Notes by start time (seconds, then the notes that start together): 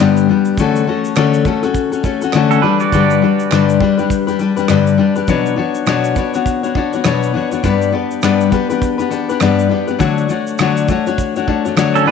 0.00 G2 D3 G3 B3 D4 G4
0.16 shaker
0.29 G3 B3 D4 G4
0.45 shaker
0.58 D3 A3 C#4 F#4 A4, kick, shaker
0.76 shaker
0.87 A3 C#4 F#4 A4
1.05 shaker
1.16 D3 A3 C#4 F#4 A4, cross-stick, clap, shaker
1.34 shaker
1.45 A3 C#4 F#4 A4, kick, shaker
1.63 C#4 F#4 A4, cross-stick, shaker
1.74 kick, shaker
1.92 C#4 F#4 A4, shaker
2.03 A3 C#4 F#4 A4, kick, shaker
2.21 C#4 F#4 A4, shaker
2.33 D3 A3 C#4 F#4 A4, cross-stick, clap, shaker
2.51 C#4 A4, shaker
2.62 G3 D4 G4 B4
2.80 F#4 D5, shaker
2.92 G2 D3 G3 D4 G4 B4, kick, shaker
3.10 shaker
3.22 G3 D4 G4 B4
3.40 shaker
3.51 G2 D3 G3 D4 G4 B4, cross-stick, clap, shaker
3.69 shaker
3.81 G3 D4 G4 B4, kick
3.97 G3 D4 G4 B4, shaker
4.10 kick, shaker
4.27 G3 D4 G4 B4, shaker
4.39 G3 D4 G4 B4, shaker
4.56 G3 D4 G4 B4, shaker
4.68 G2 D3 G3 D4 G4 B4, cross-stick, clap, shaker
4.87 shaker
4.98 G3 D4 G4 B4
5.16 G3 D4 G4 B4, shaker
5.28 B2 F#3 B3 D4 F#4 C#5, kick, shaker
5.46 shaker
5.56 B3 D4 F#4 C#5
5.75 shaker
5.86 B2 F#3 B3 D4 F#4 C#5, cross-stick, clap, shaker
6.04 shaker
6.16 B3 D4 F#4 C#5, kick, shaker
6.34 B3 D4 F#4 C#5, cross-stick, shaker
6.46 kick, shaker
6.63 B3 D4 F#4 C#5, shaker
6.75 B3 D4 F#4 C#5, kick
6.93 B3 D4 F#4 C#5, shaker
7.04 B2 F#3 B3 D4 F#4 C#5, cross-stick, clap, shaker
7.23 shaker
7.34 B3 D4 F#4 C#5
7.51 B3 D4 F#4 C#5, shaker
7.63 G2 G3 B3 D4 G4 B4, kick, shaker
7.82 shaker
7.92 B3 D4 G4 B4
8.11 shaker
8.22 G2 G3 B3 D4 G4 B4, cross-stick, clap, shaker
8.41 shaker
8.51 B3 D4 G4 B4, kick, shaker
8.70 B3 D4 G4 B4, shaker
8.82 kick, shaker
8.98 B3 D4 G4 B4, shaker
9.10 B3 D4 G4 B4, shaker
9.29 B3 D4 G4 B4, shaker
9.41 G2 G3 B3 D4 G4 B4, cross-stick, clap, shaker
9.59 shaker
9.69 B3 D4 G4 B4
9.87 B3 D4 G4 B4, shaker
9.99 D3 F#3 A3 D4 F#4 C#5, kick, shaker
10.18 shaker
10.29 A3 D4 F#4 C#5, shaker
10.47 shaker
10.58 D3 F#3 A3 D4 F#4 C#5, cross-stick, clap, shaker
10.77 shaker
10.88 A3 D4 F#4 C#5, kick, shaker
11.06 A3 D4 F#4 C#5, cross-stick, shaker
11.18 kick, shaker
11.36 A3 D4 F#4 C#5, shaker
11.47 A3 D4 F#4 C#5, kick
11.65 A3 D4 F#4 C#5, shaker
11.76 D3 F#3 A3 D4 F#4 C#5, cross-stick, clap, shaker
11.95 C#4 A4, shaker
12.06 B3 D4 G4 B4